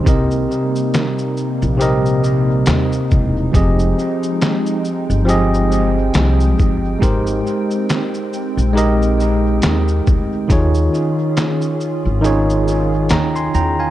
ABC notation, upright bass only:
X:1
M:4/4
L:1/16
Q:"Swing 16ths" 1/4=69
K:Cphr
V:1 name="Upright bass" clef=bass
C,,2 z4 z B,,,4- B,,, E,,2 =E,,,2 | F,,,2 z4 z G,,,4- G,,, C,,2 G,,,2 | A,,,2 z4 z B,,,4- B,,, E,,2 =D,,2 | E,,2 z4 z A,,,4- A,,, E,,2 =E,,2 |]